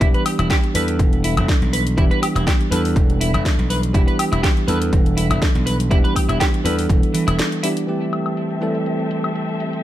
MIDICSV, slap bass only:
0, 0, Header, 1, 2, 480
1, 0, Start_track
1, 0, Tempo, 491803
1, 11, Time_signature, 4, 2, 24, 8
1, 9595, End_track
2, 0, Start_track
2, 0, Title_t, "Slap bass"
2, 0, Program_c, 0, 36
2, 12, Note_on_c, 0, 28, 93
2, 119, Note_off_c, 0, 28, 0
2, 380, Note_on_c, 0, 28, 89
2, 473, Note_off_c, 0, 28, 0
2, 734, Note_on_c, 0, 40, 91
2, 971, Note_on_c, 0, 28, 85
2, 985, Note_off_c, 0, 40, 0
2, 1306, Note_off_c, 0, 28, 0
2, 1339, Note_on_c, 0, 28, 94
2, 1433, Note_off_c, 0, 28, 0
2, 1580, Note_on_c, 0, 35, 76
2, 1903, Note_off_c, 0, 35, 0
2, 1930, Note_on_c, 0, 28, 92
2, 2038, Note_off_c, 0, 28, 0
2, 2298, Note_on_c, 0, 28, 92
2, 2393, Note_off_c, 0, 28, 0
2, 2650, Note_on_c, 0, 40, 88
2, 2890, Note_on_c, 0, 28, 92
2, 2905, Note_off_c, 0, 40, 0
2, 3226, Note_off_c, 0, 28, 0
2, 3258, Note_on_c, 0, 28, 100
2, 3352, Note_off_c, 0, 28, 0
2, 3499, Note_on_c, 0, 35, 77
2, 3822, Note_off_c, 0, 35, 0
2, 3849, Note_on_c, 0, 28, 94
2, 3957, Note_off_c, 0, 28, 0
2, 4220, Note_on_c, 0, 28, 91
2, 4313, Note_off_c, 0, 28, 0
2, 4568, Note_on_c, 0, 40, 92
2, 4809, Note_on_c, 0, 28, 93
2, 4824, Note_off_c, 0, 40, 0
2, 5145, Note_off_c, 0, 28, 0
2, 5178, Note_on_c, 0, 28, 100
2, 5272, Note_off_c, 0, 28, 0
2, 5418, Note_on_c, 0, 35, 80
2, 5742, Note_off_c, 0, 35, 0
2, 5769, Note_on_c, 0, 28, 100
2, 5878, Note_off_c, 0, 28, 0
2, 6140, Note_on_c, 0, 28, 96
2, 6234, Note_off_c, 0, 28, 0
2, 6490, Note_on_c, 0, 40, 93
2, 6695, Note_off_c, 0, 40, 0
2, 6729, Note_on_c, 0, 28, 90
2, 6838, Note_off_c, 0, 28, 0
2, 7101, Note_on_c, 0, 28, 78
2, 7212, Note_off_c, 0, 28, 0
2, 9595, End_track
0, 0, End_of_file